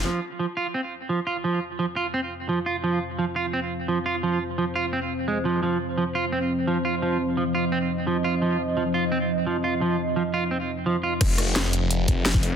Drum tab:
CC |----------------|----------------|----------------|----------------|
HH |----------------|----------------|----------------|----------------|
SD |----------------|----------------|----------------|----------------|
BD |----------------|----------------|----------------|----------------|

CC |----------------|----------------|----------------|----------------|
HH |----------------|----------------|----------------|----------------|
SD |----------------|----------------|----------------|----------------|
BD |----------------|----------------|----------------|----------------|

CC |x---------------|
HH |x-x-x-x-x-x-x-o-|
SD |--r-o-------o---|
BD |o---------o--o--|